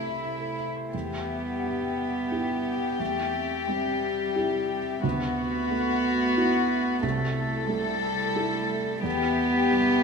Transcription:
0.00 0.89 C2 soft
0.00 0.93 C3 soft
0.00 0.94 A3 medium
0.00 0.97 C4 soft
0.00 0.40 E4 medium
0.00 0.58 E4 soft
0.00 0.70 E4 soft
0.00 0.94 E4 medium
0.00 0.39 A4 soft
0.00 0.54 A4 soft
0.00 0.96 B4 medium
0.00 0.90 E5 medium
0.00 0.21 A5 soft
0.05 0.57 E5 soft
0.22 0.97 A5 soft
0.40 0.97 A4 soft
0.59 4.49 E5 soft
0.77 0.97 C5 soft
0.93 2.96 E2 soft
0.93 2.97 G3 soft
0.93 3.02 B3 medium
0.93 5.00 G4 soft
0.93 7.00 E5 medium
0.93 2.97 F#5 medium
1.64 2.73 B3 soft
2.32 2.96 E4 soft
2.32 2.96 G4 soft
3.00 5.00 E2 soft
3.00 3.70 A3 medium
3.00 5.04 C4 soft
3.00 5.04 G4 soft
3.68 5.03 G3 medium
3.68 4.77 C4 soft
4.36 4.99 E4 soft
4.36 4.99 G4 soft
5.03 6.99 D2 soft
5.03 9.05 A3 medium
5.03 7.04 B3 medium
5.03 7.03 F#4 medium
5.03 6.99 F#4 medium
5.71 6.77 A3 soft
6.37 6.99 E4 soft
6.37 6.99 F#4 soft
7.03 9.00 C2 soft
7.03 7.70 A3 medium
7.03 9.05 E4 medium
7.03 9.01 A4 medium
7.03 10.03 E5 medium
7.68 9.03 G3 medium
7.68 8.77 A3 soft
8.36 9.01 E4 soft
8.36 9.01 A4 soft
9.03 10.03 E2 medium
9.03 10.03 G3 medium
9.03 10.03 B3 loud
9.03 10.03 G4 medium
9.03 10.03 F#5 medium
9.71 10.03 G3 soft

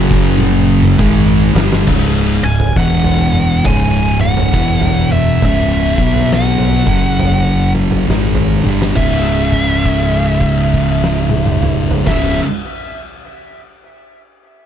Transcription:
0.00 0.95 F#1 loud
0.00 0.98 F#2 loud
0.00 0.99 C#3 loud
0.00 0.99 F#3 loud
0.11 kick medium
0.38 high tom medium
0.83 mid tom medium
0.99 1.51 G#1 medium
0.99 1.53 G#2 loud
0.99 1.54 D#3 loud
0.99 1.54 G#3 loud
0.99 kick loud
1.55 1.86 G1 loud
1.55 1.87 G2 medium
1.55 1.87 D3 loud
1.55 1.88 G3 loud
1.55 snare loud
1.73 snare loud
1.87 2.40 C#1 medium
1.87 2.42 C#2 loud
1.87 2.42 G#2 loud
1.87 2.43 C#3 loud
1.87 kick loud
1.87 floor tom medium
1.87 crash loud
2.43 2.74 C#1 medium
2.43 2.70 C#2 medium
2.43 2.70 G#2 medium
2.43 2.77 G#5 loud
2.60 floor tom medium
2.76 3.61 E1 medium
2.76 3.64 E2 medium
2.76 3.64 B2 medium
2.76 3.64 E3 loud
2.76 3.65 F#5 loud
2.76 kick loud
3.04 floor tom medium
3.32 mid tom medium
3.64 4.49 C#1 medium
3.64 4.52 C#2 medium
3.64 4.52 G#2 medium
3.64 4.53 C#3 medium
3.64 4.20 G#5 loud
3.64 kick loud
3.64 floor tom medium
4.21 5.12 F#5 loud
4.21 mid tom medium
4.37 floor tom medium
4.37 mid tom medium
4.53 5.38 E1 medium
4.53 5.41 E2 medium
4.53 5.41 B2 medium
4.53 5.42 E3 loud
4.53 kick loud
4.81 floor tom medium
5.09 5.44 E5 medium
5.09 mid tom medium
5.42 5.94 C#1 loud
5.42 5.96 C#2 medium
5.42 5.96 G#2 medium
5.42 5.97 C#3 loud
5.42 6.33 E5 medium
5.42 kick loud
5.42 floor tom medium
5.98 6.83 B1 medium
5.98 6.85 B2 medium
5.98 6.85 F#3 medium
5.98 6.85 B3 medium
5.98 kick loud
6.14 floor tom medium
6.33 7.72 F#5 medium
6.33 snare medium
6.58 floor tom medium
6.86 8.04 F#1 medium
6.86 8.07 F#2 loud
6.86 8.07 C#3 loud
6.86 8.08 F#3 loud
6.86 kick medium
6.86 mid tom medium
7.20 floor tom medium
7.75 mid tom medium
7.91 floor tom medium
7.91 mid tom medium
8.07 8.60 G#1 medium
8.07 8.62 G#2 medium
8.07 8.62 D#3 medium
8.07 8.62 G#3 loud
8.07 snare medium
8.35 floor tom medium
8.63 8.95 G1 loud
8.63 8.95 G2 medium
8.63 8.96 D3 medium
8.63 8.96 G3 medium
8.63 high tom medium
8.82 snare medium
8.95 11.90 C#1 medium
8.95 12.06 C#2 medium
8.95 12.08 G#2 loud
8.95 12.10 C#3 loud
8.95 11.90 E5 medium
8.95 kick loud
8.95 crash medium
9.53 kick medium
9.53 crash soft
9.69 crash soft
9.86 kick medium
9.86 crash soft
10.13 crash soft
10.41 kick medium
10.41 crash soft
10.58 crash soft
10.74 kick medium
10.74 crash medium
11.04 snare medium
11.29 high tom medium
11.46 mid tom medium
11.63 mid tom loud
11.91 floor tom loud
12.06 12.39 C#1 medium
12.06 12.41 C#2 medium
12.06 12.42 G#2 medium
12.06 12.43 C#3 loud
12.06 12.39 E5 medium
12.06 kick loud
12.06 snare loud
12.06 crash loud

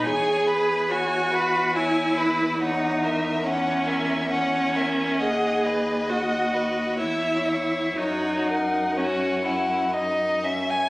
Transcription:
0.04 5.21 E2 medium
0.04 0.91 G#4 medium
0.04 0.48 C#5 soft
0.04 0.49 G#5 medium
0.47 0.90 B4 soft
0.47 0.93 B5 soft
0.89 1.77 F#4 medium
0.89 1.32 C#5 soft
0.89 1.36 G#5 soft
1.31 1.74 B4 soft
1.31 1.75 B5 soft
1.75 2.61 E4 medium
1.75 2.19 C#5 soft
1.75 2.20 G#5 soft
2.17 2.59 B4 soft
2.17 2.61 B5 soft
2.60 3.44 D#4 medium
2.60 3.05 C#5 soft
2.60 3.06 F#5 soft
3.04 3.45 A#4 soft
3.04 3.47 E5 soft
3.44 4.28 C#4 medium
3.44 3.87 C#5 soft
3.44 3.89 F#5 soft
3.85 4.28 A#4 soft
3.85 4.30 E5 soft
4.29 5.23 C#4 medium
4.29 4.76 C#5 soft
4.29 4.77 F#5 soft
4.74 5.19 A#4 soft
4.74 5.20 E5 soft
5.20 7.01 D#2 soft
5.20 6.11 G#4 medium
5.20 5.68 D#5 soft
5.20 5.67 F#5 soft
5.65 6.11 B4 soft
5.65 6.11 D#5 soft
6.09 6.99 F#4 medium
6.09 6.56 D#5 soft
6.09 6.54 F#5 soft
6.53 6.99 B4 soft
6.53 6.98 D#5 soft
6.98 7.98 E2 soft
6.98 7.99 E4 medium
6.98 7.48 C#5 soft
6.98 7.50 E5 soft
7.46 7.98 C#5 soft
7.46 7.96 E5 soft
7.96 10.68 F#2 soft
7.96 8.99 D#4 soft
7.96 8.51 F#4 soft
7.96 8.48 C#5 soft
8.47 8.97 A#4 soft
8.47 8.98 F#5 soft
8.97 9.95 C#4 soft
8.97 9.43 F#4 soft
8.97 9.47 C#5 soft
9.45 9.95 E4 soft
9.45 9.94 F#5 soft
9.93 10.45 D#4 soft
9.93 10.46 D#5 soft
10.43 10.89 C#4 soft
10.43 10.71 E5 soft
10.70 10.89 G#5 medium

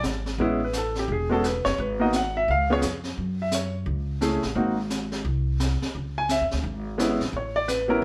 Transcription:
0.03 0.37 G#1 medium
0.03 snare medium
0.03 hi-hat pedal medium
0.26 snare soft
0.38 1.05 A1 medium
0.38 0.59 G#3 medium
0.38 0.59 B3 medium
0.38 0.60 C#4 medium
0.38 0.60 E4 medium
0.38 brush sweep soft
0.64 0.76 B4 medium
0.73 snare medium
0.73 hi-hat pedal medium
0.78 0.97 A4 medium
0.95 1.10 G4 medium
0.95 snare soft
1.08 1.61 E1 medium
1.08 brush sweep soft
1.12 1.32 G#4 medium
1.29 1.42 G#3 medium
1.29 1.42 B3 medium
1.29 1.43 C#4 medium
1.29 1.43 F#4 medium
1.29 1.44 A4 medium
1.44 1.66 B4 medium
1.44 snare medium
1.44 hi-hat pedal soft
1.65 1.78 F#1 medium
1.65 1.78 C#5 loud
1.65 snare soft
1.78 2.44 G#1 medium
1.78 2.00 B4 medium
1.78 brush sweep soft
2.00 2.12 A#3 medium
2.00 2.12 B3 medium
2.00 2.12 D#4 medium
2.00 2.12 F#4 medium
2.00 2.13 D#5 medium
2.13 2.36 F#5 medium
2.13 snare medium
2.13 hi-hat pedal medium
2.37 2.49 E5 medium
2.48 2.80 C#2 medium
2.48 2.70 F5 medium
2.48 brush sweep soft
2.70 2.82 B3 medium
2.70 2.82 C#4 medium
2.70 2.82 F4 medium
2.70 2.82 G#4 medium
2.70 2.80 C#5 loud
2.82 3.15 F2 medium
2.82 snare medium
2.82 hi-hat pedal medium
3.04 snare soft
3.17 3.83 F#2 medium
3.17 brush sweep medium
3.42 3.53 E5 medium
3.51 3.75 C#5 medium
3.51 snare medium
3.51 hi-hat pedal medium
3.86 4.39 C#2 medium
3.86 brush sweep soft
4.21 4.41 A3 medium
4.21 4.41 C#4 medium
4.21 4.41 E4 medium
4.21 4.42 G#4 medium
4.21 snare medium
4.21 hi-hat pedal soft
4.42 4.55 A1 medium
4.42 snare soft
4.55 5.22 G#1 medium
4.55 4.75 A#3 medium
4.55 4.76 C4 medium
4.55 4.76 D#4 medium
4.55 4.76 F#4 medium
4.55 brush sweep soft
4.90 snare medium
4.90 hi-hat pedal medium
5.12 snare soft
5.25 5.78 C2 medium
5.25 brush sweep soft
5.60 snare medium
5.60 hi-hat pedal soft
5.82 snare soft
5.94 6.38 C#2 medium
5.94 brush sweep soft
6.18 6.30 G#5 medium
6.29 6.44 E5 medium
6.29 snare medium
6.29 hi-hat pedal medium
6.41 6.52 E2 medium
6.51 6.63 D2 medium
6.51 snare soft
6.63 7.16 G#1 medium
6.63 brush sweep soft
6.98 7.18 G#3 medium
6.98 7.18 B3 medium
6.98 7.18 C#4 medium
6.98 7.19 E4 medium
6.98 snare medium
6.98 hi-hat pedal soft
7.20 7.32 A#1 medium
7.20 snare soft
7.33 7.99 A1 medium
7.33 7.56 C#5 medium
7.33 brush sweep soft
7.56 7.68 D5 medium
7.68 7.89 B4 medium
7.68 snare medium
7.68 hi-hat pedal medium
7.88 8.04 G3 medium
7.88 8.04 B3 medium
7.88 8.04 C#4 medium
7.88 8.04 E4 medium
7.88 8.03 A#4 medium

